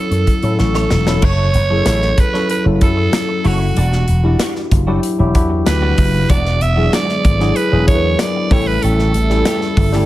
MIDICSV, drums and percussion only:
0, 0, Header, 1, 2, 480
1, 0, Start_track
1, 0, Tempo, 633580
1, 930, Time_signature, 4, 2, 24, 8
1, 7619, End_track
2, 0, Start_track
2, 0, Title_t, "Drums"
2, 88, Note_on_c, 9, 42, 51
2, 164, Note_off_c, 9, 42, 0
2, 205, Note_on_c, 9, 42, 60
2, 207, Note_on_c, 9, 36, 71
2, 281, Note_off_c, 9, 42, 0
2, 283, Note_off_c, 9, 36, 0
2, 323, Note_on_c, 9, 42, 43
2, 398, Note_off_c, 9, 42, 0
2, 445, Note_on_c, 9, 38, 49
2, 520, Note_off_c, 9, 38, 0
2, 565, Note_on_c, 9, 38, 49
2, 641, Note_off_c, 9, 38, 0
2, 685, Note_on_c, 9, 38, 76
2, 761, Note_off_c, 9, 38, 0
2, 808, Note_on_c, 9, 38, 80
2, 884, Note_off_c, 9, 38, 0
2, 924, Note_on_c, 9, 49, 87
2, 928, Note_on_c, 9, 36, 93
2, 1000, Note_off_c, 9, 49, 0
2, 1004, Note_off_c, 9, 36, 0
2, 1166, Note_on_c, 9, 42, 61
2, 1241, Note_off_c, 9, 42, 0
2, 1407, Note_on_c, 9, 38, 90
2, 1407, Note_on_c, 9, 42, 96
2, 1483, Note_off_c, 9, 38, 0
2, 1483, Note_off_c, 9, 42, 0
2, 1529, Note_on_c, 9, 38, 31
2, 1605, Note_off_c, 9, 38, 0
2, 1650, Note_on_c, 9, 36, 89
2, 1650, Note_on_c, 9, 42, 75
2, 1725, Note_off_c, 9, 42, 0
2, 1726, Note_off_c, 9, 36, 0
2, 1774, Note_on_c, 9, 38, 32
2, 1850, Note_off_c, 9, 38, 0
2, 1891, Note_on_c, 9, 42, 82
2, 1966, Note_off_c, 9, 42, 0
2, 2130, Note_on_c, 9, 42, 59
2, 2133, Note_on_c, 9, 36, 73
2, 2205, Note_off_c, 9, 42, 0
2, 2208, Note_off_c, 9, 36, 0
2, 2372, Note_on_c, 9, 38, 112
2, 2372, Note_on_c, 9, 42, 97
2, 2447, Note_off_c, 9, 38, 0
2, 2448, Note_off_c, 9, 42, 0
2, 2610, Note_on_c, 9, 46, 72
2, 2686, Note_off_c, 9, 46, 0
2, 2853, Note_on_c, 9, 42, 87
2, 2929, Note_off_c, 9, 42, 0
2, 2974, Note_on_c, 9, 38, 35
2, 3050, Note_off_c, 9, 38, 0
2, 3089, Note_on_c, 9, 42, 60
2, 3164, Note_off_c, 9, 42, 0
2, 3330, Note_on_c, 9, 38, 101
2, 3330, Note_on_c, 9, 42, 95
2, 3405, Note_off_c, 9, 38, 0
2, 3406, Note_off_c, 9, 42, 0
2, 3453, Note_on_c, 9, 38, 34
2, 3529, Note_off_c, 9, 38, 0
2, 3572, Note_on_c, 9, 36, 92
2, 3573, Note_on_c, 9, 42, 76
2, 3648, Note_off_c, 9, 36, 0
2, 3649, Note_off_c, 9, 42, 0
2, 3812, Note_on_c, 9, 42, 91
2, 3888, Note_off_c, 9, 42, 0
2, 4052, Note_on_c, 9, 42, 74
2, 4053, Note_on_c, 9, 36, 79
2, 4128, Note_off_c, 9, 42, 0
2, 4129, Note_off_c, 9, 36, 0
2, 4292, Note_on_c, 9, 38, 114
2, 4292, Note_on_c, 9, 42, 97
2, 4367, Note_off_c, 9, 38, 0
2, 4368, Note_off_c, 9, 42, 0
2, 4528, Note_on_c, 9, 46, 68
2, 4531, Note_on_c, 9, 36, 95
2, 4604, Note_off_c, 9, 46, 0
2, 4607, Note_off_c, 9, 36, 0
2, 4770, Note_on_c, 9, 42, 86
2, 4771, Note_on_c, 9, 36, 99
2, 4846, Note_off_c, 9, 42, 0
2, 4847, Note_off_c, 9, 36, 0
2, 4891, Note_on_c, 9, 38, 34
2, 4967, Note_off_c, 9, 38, 0
2, 5008, Note_on_c, 9, 42, 64
2, 5084, Note_off_c, 9, 42, 0
2, 5251, Note_on_c, 9, 38, 96
2, 5252, Note_on_c, 9, 42, 86
2, 5327, Note_off_c, 9, 38, 0
2, 5327, Note_off_c, 9, 42, 0
2, 5371, Note_on_c, 9, 38, 31
2, 5447, Note_off_c, 9, 38, 0
2, 5491, Note_on_c, 9, 36, 88
2, 5492, Note_on_c, 9, 42, 76
2, 5566, Note_off_c, 9, 36, 0
2, 5567, Note_off_c, 9, 42, 0
2, 5609, Note_on_c, 9, 38, 36
2, 5685, Note_off_c, 9, 38, 0
2, 5728, Note_on_c, 9, 42, 81
2, 5803, Note_off_c, 9, 42, 0
2, 5969, Note_on_c, 9, 36, 86
2, 5969, Note_on_c, 9, 42, 69
2, 6044, Note_off_c, 9, 42, 0
2, 6045, Note_off_c, 9, 36, 0
2, 6205, Note_on_c, 9, 38, 104
2, 6205, Note_on_c, 9, 42, 85
2, 6281, Note_off_c, 9, 38, 0
2, 6281, Note_off_c, 9, 42, 0
2, 6447, Note_on_c, 9, 36, 103
2, 6449, Note_on_c, 9, 46, 73
2, 6522, Note_off_c, 9, 36, 0
2, 6524, Note_off_c, 9, 46, 0
2, 6686, Note_on_c, 9, 42, 77
2, 6762, Note_off_c, 9, 42, 0
2, 6812, Note_on_c, 9, 38, 38
2, 6887, Note_off_c, 9, 38, 0
2, 6927, Note_on_c, 9, 42, 72
2, 7003, Note_off_c, 9, 42, 0
2, 7046, Note_on_c, 9, 38, 39
2, 7121, Note_off_c, 9, 38, 0
2, 7163, Note_on_c, 9, 38, 101
2, 7163, Note_on_c, 9, 42, 94
2, 7238, Note_off_c, 9, 38, 0
2, 7239, Note_off_c, 9, 42, 0
2, 7283, Note_on_c, 9, 38, 35
2, 7359, Note_off_c, 9, 38, 0
2, 7401, Note_on_c, 9, 46, 72
2, 7402, Note_on_c, 9, 36, 97
2, 7477, Note_off_c, 9, 46, 0
2, 7478, Note_off_c, 9, 36, 0
2, 7521, Note_on_c, 9, 38, 30
2, 7597, Note_off_c, 9, 38, 0
2, 7619, End_track
0, 0, End_of_file